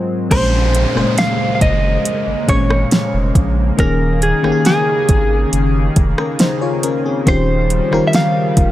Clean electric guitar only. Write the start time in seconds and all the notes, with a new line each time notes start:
0.32 C5
1.19 F5
1.55 F5
1.62 D#5
2.49 C#5
3.80 A#4
4.23 G#4
4.67 G#4
7.28 C5
8.07 E5
8.16 F5